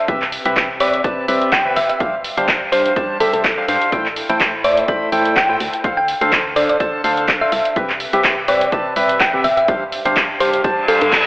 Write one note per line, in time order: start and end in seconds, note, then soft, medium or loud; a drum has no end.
0.08 0.38 C2 loud
0.08 0.23 C3 medium
0.08 0.23 C4 medium
0.08 0.23 G4 medium
0.08 0.23 B4 medium
0.08 0.23 E5 loud
0.08 kick loud
0.08 closed hi-hat medium
0.22 clap soft
0.32 open hi-hat loud
0.45 0.98 C2 loud
0.45 0.68 C3 medium
0.45 0.68 C4 medium
0.45 0.68 G4 medium
0.45 0.68 B4 medium
0.45 0.68 E5 loud
0.45 closed hi-hat medium
0.56 kick loud
0.56 clap loud
0.56 closed hi-hat soft
0.80 1.01 C3 medium
0.80 1.01 C4 medium
0.80 1.01 G4 medium
0.80 1.01 B4 medium
0.80 1.17 D5 medium
0.80 1.01 E5 medium
0.80 open hi-hat loud
0.94 closed hi-hat medium
1.04 1.26 C3 loud
1.04 1.26 C4 medium
1.04 1.26 G4 medium
1.04 1.26 B4 medium
1.04 1.26 A5 loud
1.04 kick loud
1.04 closed hi-hat medium
1.28 1.58 C2 medium
1.28 1.51 C3 medium
1.28 1.51 C4 medium
1.28 1.51 G4 medium
1.28 1.51 B4 medium
1.28 1.51 E5 loud
1.28 open hi-hat loud
1.42 closed hi-hat medium
1.52 1.67 G5 medium
1.52 kick loud
1.52 clap loud
1.52 closed hi-hat soft
1.65 1.73 G1 medium
1.65 1.79 C3 medium
1.65 1.79 C4 medium
1.65 1.79 G4 medium
1.65 1.79 B4 medium
1.65 1.79 E5 medium
1.76 1.85 G1 loud
1.76 1.85 E5 medium
1.76 open hi-hat medium
1.89 1.96 E5 medium
1.89 closed hi-hat medium
2.00 2.30 G1 medium
2.00 2.15 G3 medium
2.00 2.15 D4 medium
2.00 2.15 G4 medium
2.00 2.15 C5 medium
2.00 2.15 F5 loud
2.00 kick loud
2.00 closed hi-hat soft
2.24 open hi-hat loud
2.37 2.90 G1 loud
2.37 2.60 G3 medium
2.37 2.60 D4 medium
2.37 2.60 G4 medium
2.37 2.60 C5 medium
2.37 2.60 F5 medium
2.37 closed hi-hat medium
2.48 kick loud
2.48 clap loud
2.48 closed hi-hat soft
2.72 2.93 G3 medium
2.72 2.93 D4 medium
2.72 2.93 G4 medium
2.72 2.87 C5 medium
2.72 2.93 C5 medium
2.72 2.93 F5 medium
2.72 open hi-hat loud
2.86 closed hi-hat medium
2.96 3.18 G3 loud
2.96 3.18 D4 medium
2.96 3.18 G4 medium
2.96 3.18 C5 medium
2.96 3.18 A5 loud
2.96 kick loud
2.96 closed hi-hat soft
3.20 3.29 G1 medium
3.20 3.54 G3 medium
3.20 3.54 D4 medium
3.20 3.54 G4 medium
3.20 3.29 A4 medium
3.20 3.54 C5 medium
3.20 3.54 E5 medium
3.20 open hi-hat loud
3.33 3.62 F1 loud
3.33 3.40 A4 medium
3.33 closed hi-hat medium
3.44 kick loud
3.44 clap loud
3.44 closed hi-hat soft
3.57 3.66 G3 medium
3.57 3.66 D4 medium
3.57 3.66 G4 medium
3.57 3.66 C5 medium
3.57 3.66 F5 medium
3.68 3.77 G2 medium
3.68 3.90 D4 medium
3.68 3.90 G4 medium
3.68 3.90 C5 medium
3.68 3.90 F5 loud
3.68 open hi-hat medium
3.82 closed hi-hat medium
3.92 4.22 A1 loud
3.92 4.07 A3 medium
3.92 4.07 E4 medium
3.92 4.07 A4 medium
3.92 4.07 C5 medium
3.92 4.07 G5 loud
3.92 kick loud
3.92 closed hi-hat soft
4.06 clap soft
4.16 open hi-hat loud
4.29 4.82 A1 loud
4.29 4.52 A3 medium
4.29 4.52 E4 medium
4.29 4.52 A4 medium
4.29 4.52 C5 medium
4.29 4.52 G5 medium
4.29 closed hi-hat medium
4.40 kick loud
4.40 clap loud
4.40 closed hi-hat soft
4.64 4.85 A3 medium
4.64 4.85 E4 medium
4.64 4.85 A4 medium
4.64 4.85 C5 medium
4.64 5.01 D5 medium
4.64 4.85 G5 medium
4.64 open hi-hat medium
4.77 closed hi-hat medium
4.88 5.10 A3 medium
4.88 5.10 E4 medium
4.88 5.10 A4 medium
4.88 5.10 C5 medium
4.88 5.10 B5 loud
4.88 kick loud
4.88 closed hi-hat medium
5.12 5.42 A1 medium
5.12 5.35 A3 medium
5.12 5.35 E4 medium
5.12 5.35 A4 medium
5.12 5.35 C5 medium
5.12 5.35 G5 loud
5.12 open hi-hat loud
5.25 closed hi-hat medium
5.36 5.51 G5 medium
5.36 kick loud
5.36 clap loud
5.36 closed hi-hat soft
5.49 5.56 A2 medium
5.49 5.59 E4 medium
5.49 5.59 A4 medium
5.49 5.59 C5 medium
5.49 5.59 G5 loud
5.60 5.69 D2 loud
5.60 open hi-hat medium
5.73 closed hi-hat medium
5.84 6.14 D2 loud
5.84 5.99 D3 medium
5.84 5.99 D4 medium
5.84 5.99 A4 medium
5.84 5.99 C5 medium
5.84 5.99 F5 loud
5.84 kick loud
5.84 closed hi-hat medium
5.97 6.10 G5 medium
6.08 open hi-hat medium
6.21 6.74 D2 loud
6.21 6.44 D3 medium
6.21 6.44 D4 medium
6.21 6.44 A4 medium
6.21 6.44 C5 medium
6.21 6.44 F5 loud
6.21 closed hi-hat medium
6.32 kick loud
6.32 clap loud
6.32 closed hi-hat soft
6.56 6.77 D3 medium
6.56 6.77 D4 medium
6.56 6.77 A4 medium
6.56 6.77 C5 medium
6.56 6.65 D5 medium
6.56 6.77 F5 medium
6.56 open hi-hat medium
6.69 6.76 D5 medium
6.69 closed hi-hat medium
6.80 7.02 D3 loud
6.80 7.02 D4 medium
6.80 7.02 A4 medium
6.80 7.02 C5 medium
6.80 7.02 A5 loud
6.80 kick loud
6.80 closed hi-hat medium
7.04 7.34 D2 medium
7.04 7.27 D3 loud
7.04 7.27 D4 medium
7.04 7.27 A4 medium
7.04 7.27 C5 medium
7.04 7.27 F5 loud
7.04 open hi-hat medium
7.17 closed hi-hat medium
7.28 kick loud
7.28 clap loud
7.28 closed hi-hat soft
7.41 7.48 D1 medium
7.41 7.51 D4 medium
7.41 7.51 A4 medium
7.41 7.51 C5 medium
7.41 7.48 E5 medium
7.41 7.51 F5 loud
7.52 7.61 C2 loud
7.52 7.61 E5 medium
7.52 open hi-hat medium
7.65 closed hi-hat medium
7.76 8.06 C2 loud
7.76 7.91 C3 medium
7.76 7.91 C4 medium
7.76 7.91 G4 medium
7.76 7.91 B4 medium
7.76 7.91 E5 loud
7.76 kick loud
7.76 closed hi-hat medium
7.90 clap soft
8.00 open hi-hat medium
8.13 8.66 C2 loud
8.13 8.36 C3 medium
8.13 8.36 C4 medium
8.13 8.36 G4 medium
8.13 8.36 B4 medium
8.13 8.36 E5 medium
8.13 closed hi-hat medium
8.24 kick loud
8.24 clap loud
8.24 closed hi-hat medium
8.48 8.69 C3 medium
8.48 8.69 C4 medium
8.48 8.69 G4 medium
8.48 8.69 B4 medium
8.48 8.85 D5 medium
8.48 8.69 E5 medium
8.48 open hi-hat medium
8.61 closed hi-hat medium
8.72 8.94 C3 loud
8.72 8.94 C4 medium
8.72 8.94 G4 medium
8.72 8.94 B4 medium
8.72 8.94 A5 loud
8.72 kick loud
8.72 closed hi-hat medium
8.96 9.26 C2 medium
8.96 9.19 C3 loud
8.96 9.19 C4 medium
8.96 9.19 G4 medium
8.96 9.19 B4 medium
8.96 9.19 E5 loud
8.96 open hi-hat loud
9.09 closed hi-hat medium
9.20 9.35 G5 medium
9.20 kick loud
9.20 clap loud
9.20 closed hi-hat medium
9.33 9.41 G1 medium
9.33 9.47 C3 medium
9.33 9.47 C4 medium
9.33 9.47 G4 medium
9.33 9.47 B4 medium
9.33 9.47 E5 loud
9.44 9.53 G1 loud
9.44 9.53 E5 medium
9.44 open hi-hat medium
9.57 9.64 E5 medium
9.57 closed hi-hat medium
9.68 9.98 G1 loud
9.68 9.83 G3 medium
9.68 9.83 D4 medium
9.68 9.83 G4 medium
9.68 9.83 C5 medium
9.68 9.83 F5 loud
9.68 kick loud
9.68 closed hi-hat medium
9.92 open hi-hat medium
10.05 10.58 G1 loud
10.05 10.28 G3 medium
10.05 10.28 D4 medium
10.05 10.28 G4 medium
10.05 10.28 C5 medium
10.05 10.28 F5 medium
10.05 closed hi-hat medium
10.16 kick loud
10.16 clap loud
10.16 closed hi-hat medium
10.40 10.61 G3 medium
10.40 10.61 D4 medium
10.40 10.61 G4 medium
10.40 10.55 C5 medium
10.40 10.61 C5 medium
10.40 10.61 F5 medium
10.40 open hi-hat medium
10.53 closed hi-hat medium
10.64 10.86 G3 loud
10.64 10.86 D4 medium
10.64 10.86 G4 medium
10.64 10.86 C5 medium
10.64 10.86 A5 loud
10.64 kick loud
10.64 closed hi-hat medium
10.64 reverse cymbal medium
10.88 11.11 G3 loud
10.88 11.11 D4 medium
10.88 11.11 G4 medium
10.88 10.97 A4 medium
10.88 11.11 C5 medium
10.88 11.11 F5 loud
10.88 open hi-hat medium
11.01 11.16 G2 medium
11.01 11.08 A4 medium
11.01 closed hi-hat medium
11.12 kick loud
11.12 clap loud
11.12 closed hi-hat medium